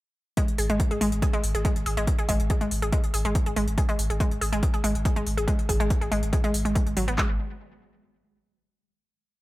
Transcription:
0.37 synth arpeggio sound G#3, kick, closed hi-hat
0.48 closed hi-hat
0.58 sub bass G#1, synth arpeggio sound G#4, open hi-hat
0.70 sub bass G#1, synth arpeggio sound G#3, closed hi-hat
0.80 kick, closed hi-hat
0.91 sub bass G#1, synth arpeggio sound G#4, closed hi-hat
1.01 sub bass G#1, synth arpeggio sound G#3, open hi-hat
1.12 sub bass G#1, closed hi-hat
1.22 synth arpeggio sound G#4, kick, closed hi-hat
1.33 synth arpeggio sound G#3, closed hi-hat
1.44 sub bass G#1, open hi-hat
1.55 sub bass G#1, synth arpeggio sound G#4, closed hi-hat
1.65 synth arpeggio sound G#3, kick, closed hi-hat
1.76 sub bass G#1, closed hi-hat
1.86 sub bass G#1, synth arpeggio sound G#4, open hi-hat
1.97 sub bass G#1, synth arpeggio sound G#3, closed hi-hat
2.07 kick, closed hi-hat
2.19 synth arpeggio sound G#4, closed hi-hat
2.29 sub bass G#1, synth arpeggio sound G#3, kick, open hi-hat
2.40 sub bass G#1, closed hi-hat
2.50 synth arpeggio sound G#4, kick, closed hi-hat
2.61 sub bass G#1, synth arpeggio sound G#3, closed hi-hat
2.71 sub bass G#1, open hi-hat
2.82 sub bass G#1, synth arpeggio sound G#4, closed hi-hat
2.92 synth arpeggio sound G#3, kick, closed hi-hat
3.04 closed hi-hat
3.14 sub bass G#1, synth arpeggio sound G#4, open hi-hat
3.25 sub bass G#1, synth arpeggio sound G#3, closed hi-hat
3.35 kick, closed hi-hat
3.46 sub bass G#1, synth arpeggio sound G#4, closed hi-hat
3.56 sub bass G#1, synth arpeggio sound G#3, open hi-hat
3.68 sub bass G#1, closed hi-hat
3.78 synth arpeggio sound G#4, kick, closed hi-hat
3.89 synth arpeggio sound G#3, closed hi-hat
3.99 sub bass G#1, open hi-hat
4.10 sub bass G#1, synth arpeggio sound G#4, closed hi-hat
4.20 synth arpeggio sound G#3, kick, closed hi-hat
4.31 sub bass G#1, closed hi-hat
4.41 sub bass G#1, synth arpeggio sound G#4, open hi-hat
4.53 sub bass G#1, synth arpeggio sound G#3, closed hi-hat
4.63 kick, closed hi-hat
4.74 synth arpeggio sound G#4, closed hi-hat
4.84 sub bass G#1, synth arpeggio sound G#3, open hi-hat
4.95 sub bass G#1, closed hi-hat
5.05 synth arpeggio sound G#4, kick, closed hi-hat
5.16 sub bass G#1, synth arpeggio sound G#3, closed hi-hat
5.27 sub bass G#1, open hi-hat
5.38 sub bass G#1, synth arpeggio sound G#4, closed hi-hat
5.48 synth arpeggio sound G#3, kick, closed hi-hat
5.59 closed hi-hat
5.69 sub bass G#1, synth arpeggio sound G#4, kick, open hi-hat
5.80 sub bass G#1, synth arpeggio sound G#3, closed hi-hat
5.90 kick, closed hi-hat
6.01 sub bass G#1, synth arpeggio sound G#4, closed hi-hat
6.12 sub bass G#1, synth arpeggio sound G#3, open hi-hat
6.23 sub bass G#1, closed hi-hat
6.33 synth arpeggio sound G#4, kick, closed hi-hat
6.44 synth arpeggio sound G#3, closed hi-hat
6.54 sub bass G#1, open hi-hat
6.65 sub bass G#1, synth arpeggio sound G#3, closed hi-hat
6.75 synth arpeggio sound G#3, kick, closed hi-hat
6.87 sub bass G#1, closed hi-hat
6.97 sub bass G#1, synth arpeggio sound F#3, open hi-hat
7.08 sub bass G#1, synth arpeggio sound B3, closed hi-hat
7.18 sub bass G#1, synth arpeggio sound G#3, kick, clap

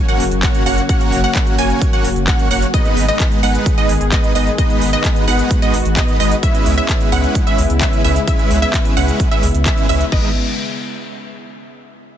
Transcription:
Already playing: analog synth pad C#3 F#3 A#3 F#4
0.08 supersaw synth A#3 C#4 F#4 C#5 F#5, synth pluck F#5, closed hi-hat
0.20 sub bass F#1, open hi-hat
0.31 sub bass F#1, closed hi-hat
0.43 supersaw synth A#3 C#4 F#4 C#5 F#5, synth pluck F#5, kick, clap, closed hi-hat
0.55 closed hi-hat
0.66 sub bass F#1, supersaw synth A#3 C#4 F#4 C#5 F#5, synth pluck F#5, open hi-hat
0.78 closed hi-hat
0.89 supersaw synth A#3 C#4 F#4 C#5 F#5, synth pluck F#5, kick, closed hi-hat
1.01 closed hi-hat
1.12 sub bass F#1, open hi-hat
1.24 supersaw synth A#3 C#4 F#4 C#5 F#5, synth pluck F#5, closed hi-hat
1.35 kick, clap, closed hi-hat
1.47 closed hi-hat
1.58 sub bass F#1, supersaw synth A#3 C#4 F#4 C#5 G#5, synth pluck G#5, open hi-hat
1.70 closed hi-hat
1.82 kick, closed hi-hat
1.93 supersaw synth A#3 C#4 F#4 C#5 F#5, synth pluck F#5, closed hi-hat
2.04 sub bass F#1, open hi-hat
2.16 sub bass F#1, closed hi-hat
2.27 supersaw synth A#3 C#4 F#4 C#5 F#5, synth pluck F#5, kick, clap, closed hi-hat
2.39 closed hi-hat
2.51 sub bass F#1, supersaw synth A#3 C#4 F#4 C#5 F#5, synth pluck F#5, open hi-hat
2.62 closed hi-hat
2.74 analog synth pad D#3 G#3 B3 G#4, supersaw synth G#3 B3 D#4 B4 D#5, synth pluck D#5, kick, closed hi-hat
2.85 closed hi-hat
2.97 sub bass G#1, open hi-hat
3.08 supersaw synth G#3 B3 D#4 B4 D#5, synth pluck D#5, closed hi-hat
3.20 kick, clap, closed hi-hat
3.32 closed hi-hat
3.43 sub bass G#1, supersaw synth G#3 B3 D#4 B4 F#5, synth pluck F#5, open hi-hat
3.55 closed hi-hat
3.66 kick, closed hi-hat
3.78 supersaw synth G#3 B3 D#4 B4 D#5, synth pluck D#5, closed hi-hat
3.89 sub bass G#1, open hi-hat
4.01 sub bass G#1, closed hi-hat
4.12 supersaw synth G#3 B3 D#4 B4 D#5, synth pluck D#5, kick, clap, closed hi-hat
4.24 closed hi-hat
4.35 sub bass G#1, supersaw synth G#3 B3 D#4 B4 D#5, synth pluck D#5, open hi-hat
4.47 closed hi-hat
4.58 supersaw synth G#3 B3 D#4 B4 D#5, analog synth pad F#4, synth pluck D#5, kick, closed hi-hat
4.70 closed hi-hat
4.81 sub bass G#1, open hi-hat
4.93 supersaw synth G#3 B3 D#4 B4 D#5, synth pluck D#5, closed hi-hat
5.04 kick, clap, closed hi-hat
5.16 closed hi-hat
5.28 sub bass G#1, supersaw synth G#3 B3 D#4 B4 F#5, synth pluck F#5, open hi-hat
5.39 closed hi-hat
5.51 kick, closed hi-hat
5.62 supersaw synth G#3 B3 D#4 B4 D#5, synth pluck D#5, closed hi-hat
5.74 sub bass G#1, open hi-hat
5.85 sub bass G#1, closed hi-hat
5.97 supersaw synth G#3 B3 D#4 B4 D#5, synth pluck D#5, kick, clap, closed hi-hat
6.08 closed hi-hat
6.20 sub bass G#1, supersaw synth G#3 B3 D#4 B4 D#5, synth pluck D#5, open hi-hat
6.31 closed hi-hat
6.43 analog synth pad C#3 G#3 E4, supersaw synth G#3 C#4 E4 B4 E5, synth pluck E5, kick, closed hi-hat
6.55 closed hi-hat
6.66 sub bass C#2, open hi-hat
6.77 supersaw synth G#3 C#4 E4 B4 E5, synth pluck E5, closed hi-hat
6.89 kick, clap, closed hi-hat
7.01 closed hi-hat
7.12 sub bass C#2, supersaw synth G#3 C#4 E4 B4 F#5, synth pluck F#5, open hi-hat
7.24 closed hi-hat
7.35 kick, closed hi-hat
7.47 supersaw synth G#3 C#4 E4 B4 E5, synth pluck E5, closed hi-hat
7.58 sub bass C#2, open hi-hat
7.70 sub bass C#2, closed hi-hat
7.81 supersaw synth G#3 C#4 E4 B4 E5, synth pluck E5, kick, clap, closed hi-hat
7.93 closed hi-hat
8.04 sub bass C#2, supersaw synth G#3 C#4 E4 B4 E5, synth pluck E5, open hi-hat
8.16 closed hi-hat
8.27 supersaw synth G#3 C#4 E4 B4 E5, synth pluck E5, kick, closed hi-hat
8.39 closed hi-hat
8.51 sub bass C#2, open hi-hat
8.62 supersaw synth G#3 C#4 E4 B4 E5, synth pluck E5, closed hi-hat
8.74 kick, clap, closed hi-hat
8.85 closed hi-hat
8.97 sub bass C#2, supersaw synth G#3 C#4 E4 B4 F#5, synth pluck F#5, open hi-hat
9.08 closed hi-hat
9.20 kick, closed hi-hat
9.31 supersaw synth G#3 C#4 E4 B4 E5, synth pluck E5, closed hi-hat
9.43 sub bass C#2, open hi-hat
9.54 sub bass C#2, closed hi-hat
9.66 supersaw synth G#3 C#4 E4 B4 E5, synth pluck E5, kick, clap, closed hi-hat
9.78 closed hi-hat
9.89 sub bass C#2, supersaw synth G#3 C#4 E4 B4 E5, synth pluck E5, open hi-hat
10.01 closed hi-hat
10.12 sub bass G#1, supersaw synth G#3 B3 D#4 B4 D#5, synth pluck D#5, kick, crash

